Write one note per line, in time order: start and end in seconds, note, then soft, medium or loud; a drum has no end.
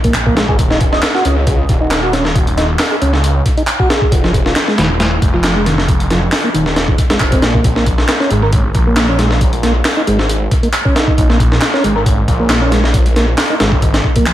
0.04 0.13 A#1 soft
0.04 0.14 A#3 medium
0.04 kick medium
0.04 closed hi-hat medium
0.14 0.43 A#1 medium
0.14 clap loud
0.14 closed hi-hat medium
0.26 0.35 A#3 medium
0.26 kick medium
0.37 0.46 G#3 medium
0.37 snare loud
0.37 closed hi-hat medium
0.49 0.56 G#1 medium
0.49 0.57 G#4 medium
0.49 kick medium
0.59 0.99 D#1 medium
0.59 kick loud
0.59 closed hi-hat medium
0.71 0.79 D#4 medium
0.71 snare soft
0.81 kick medium
0.81 closed hi-hat medium
0.92 1.01 D#5 medium
0.92 snare soft
1.02 snare loud
1.02 clap loud
1.02 closed hi-hat medium
1.15 1.24 F#4 medium
1.15 snare soft
1.25 1.65 C#2 medium
1.25 1.36 C#4 medium
1.25 closed hi-hat medium
1.47 kick loud
1.47 closed hi-hat medium
1.69 2.75 D#1 loud
1.69 kick medium
1.69 closed hi-hat medium
1.81 2.02 D#4 medium
1.91 snare loud
1.91 clap loud
1.91 closed hi-hat medium
2.03 2.13 F#4 medium
2.13 2.24 C#4 medium
2.13 snare soft
2.13 closed hi-hat medium
2.25 snare soft
2.35 kick loud
2.35 closed hi-hat medium
2.47 closed hi-hat soft
2.57 2.67 D#4 medium
2.57 snare soft
2.57 closed hi-hat medium
2.79 snare loud
2.79 clap medium
2.79 open hi-hat medium
2.91 2.96 G#4 medium
3.01 3.41 C#2 medium
3.01 3.13 C#4 medium
3.01 closed hi-hat medium
3.14 snare soft
3.24 closed hi-hat medium
3.46 kick medium
3.46 closed hi-hat medium
3.57 3.62 D#4 medium
3.57 closed hi-hat soft
3.67 clap medium
3.67 closed hi-hat medium
3.79 3.89 F#4 medium
3.79 kick medium
3.90 4.12 G#4 medium
3.90 snare loud
3.90 closed hi-hat medium
4.02 kick medium
4.12 4.52 F1 loud
4.12 kick loud
4.12 closed hi-hat medium
4.23 4.32 F3 medium
4.23 snare soft
4.34 kick medium
4.34 closed hi-hat medium
4.46 4.54 F4 medium
4.46 snare medium
4.56 snare loud
4.56 clap medium
4.56 closed hi-hat medium
4.68 4.78 G#3 medium
4.68 snare soft
4.78 5.18 D#1 medium
4.78 4.89 D#3 medium
4.78 snare loud
4.78 closed hi-hat medium
5.00 snare loud
5.00 closed hi-hat medium
5.22 6.28 F1 loud
5.22 kick medium
5.22 closed hi-hat medium
5.34 5.55 F3 medium
5.44 snare loud
5.44 clap medium
5.44 closed hi-hat medium
5.56 5.66 G#3 loud
5.66 5.77 D#3 medium
5.66 snare soft
5.66 closed hi-hat medium
5.78 snare soft
5.88 kick loud
5.88 closed hi-hat medium
6.00 closed hi-hat soft
6.10 6.20 F3 medium
6.10 snare soft
6.10 closed hi-hat medium
6.32 snare loud
6.32 clap loud
6.32 open hi-hat medium
6.44 6.49 A#3 medium
6.54 6.94 D#1 medium
6.54 6.65 D#3 medium
6.54 closed hi-hat medium
6.66 snare soft
6.76 snare medium
6.76 closed hi-hat medium
6.88 kick medium
6.98 kick medium
6.98 closed hi-hat medium
7.10 7.18 F1 soft
7.10 7.19 G#3 medium
7.10 snare medium
7.10 closed hi-hat medium
7.20 7.37 F1 medium
7.20 kick medium
7.20 clap medium
7.32 7.42 C4 medium
7.32 kick medium
7.32 closed hi-hat medium
7.42 7.59 A#1 medium
7.42 7.53 A#3 medium
7.42 snare loud
7.42 closed hi-hat medium
7.54 7.64 A#3 medium
7.54 kick medium
7.64 8.04 A#1 loud
7.64 kick loud
7.64 closed hi-hat medium
7.76 7.85 A#3 medium
7.76 snare soft
7.86 kick medium
7.86 closed hi-hat medium
7.98 snare medium
8.08 snare loud
8.08 clap medium
8.08 closed hi-hat medium
8.20 8.30 C#4 medium
8.20 snare soft
8.30 8.70 G#1 medium
8.30 8.42 G#3 medium
8.30 closed hi-hat medium
8.43 8.51 A#4 medium
8.53 kick loud
8.53 closed hi-hat medium
8.75 9.81 A#1 medium
8.75 kick medium
8.75 closed hi-hat medium
8.87 9.08 A#3 medium
8.97 snare loud
8.97 clap loud
8.97 closed hi-hat medium
9.09 9.19 C#4 loud
9.19 9.30 G#3 medium
9.19 snare soft
9.19 closed hi-hat medium
9.31 snare soft
9.41 kick loud
9.41 closed hi-hat medium
9.53 closed hi-hat soft
9.63 9.73 A#3 medium
9.63 snare soft
9.63 closed hi-hat medium
9.85 snare loud
9.85 clap loud
9.85 open hi-hat medium
9.97 10.02 D#4 medium
10.07 10.47 G#1 medium
10.07 10.18 G#3 medium
10.07 closed hi-hat medium
10.19 snare soft
10.29 closed hi-hat medium
10.51 kick medium
10.51 closed hi-hat medium
10.63 10.68 A#3 medium
10.63 closed hi-hat soft
10.73 clap loud
10.73 closed hi-hat medium
10.85 10.95 C#4 medium
10.85 kick medium
10.96 11.28 D#4 medium
10.96 snare loud
10.96 closed hi-hat medium
11.07 kick medium
11.18 11.57 A#1 loud
11.18 kick loud
11.18 closed hi-hat medium
11.29 11.38 A#3 medium
11.29 snare soft
11.40 kick medium
11.40 closed hi-hat medium
11.52 snare medium
11.61 snare loud
11.61 clap loud
11.61 closed hi-hat medium
11.74 11.83 C#4 medium
11.74 snare soft
11.84 12.24 G#1 medium
11.84 11.95 G#3 medium
11.84 closed hi-hat medium
11.96 12.04 A#4 medium
12.06 kick loud
12.06 closed hi-hat medium
12.28 13.34 A#1 loud
12.28 kick medium
12.28 closed hi-hat medium
12.40 12.61 A#3 medium
12.50 snare loud
12.50 clap loud
12.50 closed hi-hat medium
12.62 12.72 C#4 loud
12.72 12.83 G#3 medium
12.72 snare soft
12.72 closed hi-hat medium
12.84 snare soft
12.94 kick loud
12.94 closed hi-hat medium
13.06 closed hi-hat soft
13.16 13.26 A#3 medium
13.16 snare soft
13.16 closed hi-hat medium
13.38 snare loud
13.38 clap loud
13.38 open hi-hat medium
13.50 13.55 D#4 medium
13.60 14.00 G#1 medium
13.60 13.72 G#3 medium
13.60 snare loud
13.60 closed hi-hat medium
13.72 kick medium
13.82 kick medium
13.82 closed hi-hat medium
13.94 snare loud
13.94 closed hi-hat medium
14.04 kick medium
14.16 14.24 A#1 soft
14.16 14.26 A#3 medium
14.16 kick medium
14.16 closed hi-hat medium
14.26 14.33 A#1 medium
14.26 clap loud
14.26 closed hi-hat medium